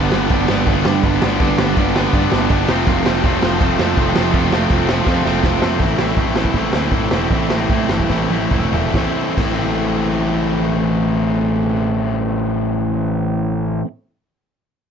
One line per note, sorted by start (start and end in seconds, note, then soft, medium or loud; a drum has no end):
0.00 0.11 G2 medium
0.00 0.11 D3 medium
0.00 0.13 G3 loud
0.00 0.13 B3 loud
0.00 0.13 D4 loud
0.00 0.14 G4 loud
0.12 0.27 G1 medium
0.12 0.30 G2 medium
0.12 0.30 D3 medium
0.12 0.31 G3 medium
0.12 0.31 B3 medium
0.12 0.31 D4 medium
0.12 0.32 G4 loud
0.12 snare loud
0.30 0.45 G1 loud
0.30 0.48 G2 medium
0.30 0.48 D3 medium
0.30 0.49 G3 medium
0.30 0.49 B3 medium
0.30 0.50 D4 loud
0.30 0.50 G4 loud
0.30 kick loud
0.30 crash medium
0.48 0.64 G1 medium
0.48 0.65 G2 loud
0.48 0.66 D3 loud
0.48 0.66 G3 loud
0.48 0.67 B3 loud
0.48 0.67 D4 loud
0.48 0.68 G4 loud
0.48 snare loud
0.66 0.81 G1 loud
0.66 0.84 G2 loud
0.66 0.84 D3 medium
0.66 0.85 G3 medium
0.66 0.85 B3 loud
0.66 0.85 D4 medium
0.66 0.86 G4 loud
0.66 kick loud
0.66 crash medium
0.85 1.03 G2 loud
0.85 1.00 G2 medium
0.85 1.04 D3 loud
0.85 1.04 G3 loud
0.85 1.04 B3 loud
0.85 1.05 D4 loud
0.85 1.05 G4 loud
0.85 snare loud
1.03 1.18 G1 medium
1.03 1.21 G2 medium
1.03 1.21 D3 medium
1.03 1.22 G3 medium
1.03 1.22 B3 medium
1.03 1.23 D4 medium
1.03 1.23 G4 loud
1.03 kick loud
1.03 crash medium
1.22 1.37 G1 loud
1.22 1.39 G2 loud
1.22 1.39 D3 medium
1.22 1.40 G3 loud
1.22 1.40 B3 loud
1.22 1.41 D4 loud
1.22 1.41 G4 loud
1.22 snare loud
1.40 1.55 G1 loud
1.40 1.57 G2 medium
1.40 1.58 D3 loud
1.40 1.58 G3 loud
1.40 1.59 B3 medium
1.40 1.59 D4 loud
1.40 1.60 G4 loud
1.40 kick loud
1.40 crash medium
1.58 1.73 G1 loud
1.58 1.76 G2 medium
1.58 1.76 D3 medium
1.58 1.77 G3 medium
1.58 1.77 B3 medium
1.58 1.78 D4 medium
1.58 1.78 G4 loud
1.58 snare loud
1.77 2.06 G1 loud
1.77 1.93 G2 medium
1.77 1.94 D3 medium
1.77 1.94 G3 loud
1.77 1.94 B3 loud
1.77 1.95 D4 medium
1.77 1.95 G4 loud
1.77 kick loud
1.77 crash medium
1.94 2.11 G2 loud
1.94 2.12 D3 loud
1.94 2.13 G3 loud
1.94 2.13 B3 loud
1.94 2.13 D4 loud
1.94 2.14 G4 loud
1.94 snare loud
2.13 2.30 G2 medium
2.13 2.28 G2 loud
2.13 2.31 D3 medium
2.13 2.31 G3 loud
2.13 2.31 B3 medium
2.13 2.32 D4 loud
2.13 2.32 G4 loud
2.13 kick loud
2.13 crash medium
2.31 2.47 G1 medium
2.31 2.48 G2 loud
2.31 2.49 D3 loud
2.31 2.49 G3 loud
2.31 2.49 B3 loud
2.31 2.50 D4 loud
2.31 2.51 G4 loud
2.31 snare loud
2.50 2.65 G1 medium
2.50 2.67 G2 medium
2.50 2.68 D3 medium
2.50 2.68 G3 medium
2.50 2.68 B3 medium
2.50 2.68 D4 medium
2.50 2.69 G4 loud
2.50 kick loud
2.50 crash medium
2.69 2.83 F1 loud
2.69 2.87 F2 loud
2.69 2.86 C3 loud
2.69 2.88 F3 loud
2.69 2.88 A3 loud
2.69 2.89 C4 loud
2.69 2.89 F4 loud
2.69 snare loud
2.87 3.02 F1 loud
2.87 3.06 F2 medium
2.87 3.05 C3 medium
2.87 3.06 F3 loud
2.87 3.07 A3 loud
2.87 3.07 C4 loud
2.87 3.07 F4 loud
2.87 kick loud
2.87 crash medium
3.05 3.20 F1 medium
3.05 3.23 F2 medium
3.05 3.23 C3 medium
3.05 3.24 F3 medium
3.05 3.24 A3 medium
3.05 3.25 C4 loud
3.05 3.25 F4 medium
3.05 snare loud
3.23 3.38 F1 loud
3.23 3.41 F2 medium
3.23 3.41 C3 loud
3.23 3.42 F3 loud
3.23 3.43 A3 medium
3.23 3.43 C4 loud
3.23 3.43 F4 loud
3.23 kick loud
3.23 crash medium
3.42 3.57 F1 medium
3.42 3.59 F2 loud
3.42 3.60 C3 loud
3.42 3.60 F3 loud
3.42 3.61 A3 loud
3.42 3.62 C4 loud
3.42 3.61 F4 loud
3.42 snare loud
3.61 3.75 F1 loud
3.61 3.77 F2 loud
3.61 3.78 C3 medium
3.61 3.78 F3 medium
3.61 3.79 A3 medium
3.61 3.80 C4 loud
3.61 3.80 F4 loud
3.61 kick loud
3.61 crash medium
3.79 3.96 F2 loud
3.79 3.94 F2 loud
3.79 3.97 C3 medium
3.79 3.97 F3 loud
3.79 3.98 A3 loud
3.79 3.98 C4 loud
3.79 3.98 F4 loud
3.79 snare loud
3.97 4.12 F1 medium
3.97 4.14 F2 medium
3.97 4.15 C3 medium
3.97 4.15 F3 medium
3.97 4.16 A3 medium
3.97 4.16 C4 medium
3.97 4.16 F4 loud
3.97 kick loud
3.97 crash medium
4.15 4.31 F1 loud
4.15 4.32 F2 medium
4.15 4.33 C3 loud
4.15 4.33 F3 loud
4.15 4.33 A3 loud
4.15 4.34 C4 loud
4.15 4.34 F4 loud
4.15 snare loud
4.33 4.48 F1 loud
4.33 4.50 F2 medium
4.33 4.50 C3 loud
4.33 4.51 F3 loud
4.33 4.51 A3 loud
4.33 4.51 C4 loud
4.33 4.52 F4 loud
4.33 kick loud
4.33 crash medium
4.51 4.66 F1 loud
4.51 4.68 F2 medium
4.51 4.69 C3 medium
4.51 4.69 F3 loud
4.51 4.70 A3 loud
4.51 4.70 C4 medium
4.51 4.70 F4 medium
4.51 snare loud
4.70 4.99 F1 loud
4.70 4.86 F2 medium
4.70 4.87 C3 medium
4.70 4.87 F3 medium
4.70 4.87 A3 loud
4.70 4.88 C4 loud
4.70 4.88 F4 loud
4.70 kick loud
4.70 crash medium
4.87 5.04 F2 loud
4.87 5.05 C3 medium
4.87 5.05 F3 loud
4.87 5.06 A3 loud
4.87 5.06 C4 loud
4.87 5.06 F4 loud
4.87 snare loud
5.05 5.23 F2 medium
5.05 5.21 F2 loud
5.05 5.24 C3 medium
5.05 5.24 F3 loud
5.05 5.24 A3 loud
5.05 5.25 C4 loud
5.05 5.25 F4 loud
5.05 kick loud
5.05 snare medium
5.24 5.40 F1 medium
5.24 5.41 F2 medium
5.24 5.42 C3 medium
5.24 5.42 F3 loud
5.24 5.43 A3 loud
5.24 5.43 C4 loud
5.24 5.43 F4 loud
5.24 snare medium
5.42 5.58 F1 medium
5.42 5.59 F2 medium
5.42 5.60 C3 loud
5.42 5.60 F3 medium
5.42 5.60 A3 loud
5.42 5.61 C4 loud
5.42 5.61 F4 medium
5.42 kick loud
5.42 snare loud
5.60 5.78 F2 loud
5.60 5.81 F2 loud
5.60 5.79 C3 loud
5.60 5.79 F3 loud
5.60 5.78 A3 loud
5.60 5.79 C4 loud
5.60 5.80 F4 loud
5.60 snare loud
5.79 5.94 A1 medium
5.79 5.97 A2 medium
5.79 5.98 E3 medium
5.79 5.98 A3 medium
5.79 5.99 C4 medium
5.79 5.99 E4 medium
5.79 kick loud
5.79 open hi-hat medium
5.98 6.13 A1 medium
5.98 6.16 A2 medium
5.98 6.17 E3 medium
5.98 6.17 A3 medium
5.98 6.18 C4 medium
5.98 6.18 E4 medium
5.98 snare loud
6.16 6.45 A1 medium
6.16 6.34 A2 medium
6.16 6.35 E3 medium
6.16 6.35 A3 medium
6.16 6.36 C4 medium
6.16 6.36 E4 medium
6.16 kick loud
6.16 open hi-hat medium
6.35 6.54 A2 medium
6.35 6.54 E3 medium
6.35 6.55 A3 loud
6.35 6.55 C4 loud
6.35 6.55 E4 loud
6.35 snare loud
6.45 kick medium
6.54 6.69 A1 medium
6.54 6.73 A2 medium
6.54 6.73 E3 medium
6.54 6.74 A3 loud
6.54 6.74 C4 medium
6.54 6.74 E4 loud
6.54 kick medium
6.54 open hi-hat medium
6.73 6.88 D2 medium
6.73 6.92 A2 medium
6.73 6.92 E3 medium
6.73 6.92 A3 medium
6.73 6.93 C4 medium
6.73 6.93 E4 medium
6.73 snare loud
6.91 7.06 A1 medium
6.91 7.11 A2 medium
6.91 7.12 E3 medium
6.91 7.12 A3 loud
6.91 7.13 C4 medium
6.91 7.13 E4 loud
6.91 kick loud
6.91 open hi-hat medium
7.11 7.26 E1 medium
7.11 7.29 A2 medium
7.11 7.30 E3 medium
7.11 7.30 A3 medium
7.11 7.31 C4 medium
7.11 7.31 E4 medium
7.11 snare loud
7.30 7.45 A1 medium
7.30 7.49 A2 medium
7.30 7.49 E3 medium
7.30 7.50 A3 medium
7.30 7.50 C4 loud
7.30 7.50 E4 medium
7.30 kick loud
7.30 open hi-hat medium
7.50 7.65 A1 medium
7.50 7.69 A2 medium
7.50 7.69 E3 medium
7.50 7.70 A3 medium
7.50 7.70 C4 medium
7.50 7.71 E4 medium
7.50 snare loud
7.69 7.85 A2 medium
7.69 7.88 A2 medium
7.69 7.89 E3 medium
7.69 7.89 A3 loud
7.69 7.90 C4 medium
7.69 7.90 E4 medium
7.69 kick loud
7.69 open hi-hat medium
7.89 8.05 G1 medium
7.89 8.09 A2 medium
7.89 8.09 E3 loud
7.89 8.10 A3 medium
7.89 8.10 C4 medium
7.89 8.10 E4 medium
7.89 snare loud
8.00 kick medium
8.10 8.25 A1 loud
8.10 8.30 A2 medium
8.10 8.30 E3 medium
8.10 8.31 A3 medium
8.10 8.31 C4 medium
8.10 8.31 E4 loud
8.10 kick medium
8.10 snare medium
8.30 8.46 A1 medium
8.30 8.50 A2 medium
8.30 8.51 E3 medium
8.30 8.51 A3 medium
8.30 8.52 C4 medium
8.30 8.52 E4 medium
8.30 high tom medium
8.51 8.67 E1 medium
8.51 8.72 A2 medium
8.51 8.72 E3 medium
8.51 8.73 A3 medium
8.51 8.73 C4 medium
8.51 8.73 E4 medium
8.51 kick loud
8.51 mid tom medium
8.72 8.89 E1 medium
8.72 8.92 A2 medium
8.72 8.93 E3 medium
8.72 8.94 A3 medium
8.72 8.94 C4 medium
8.72 8.94 E4 medium
8.72 floor tom medium
8.94 9.06 A1 medium
8.94 9.36 A2 medium
8.94 9.37 E3 medium
8.94 9.38 A3 medium
8.94 9.39 C4 medium
8.94 kick medium
8.94 snare medium
8.98 9.40 E4 medium
9.36 13.80 A1 medium
9.36 13.82 A2 medium
9.36 13.84 E3 loud
9.36 13.85 A3 medium
9.36 13.86 C4 loud
9.36 kick medium
9.36 crash medium
9.41 13.87 E4 medium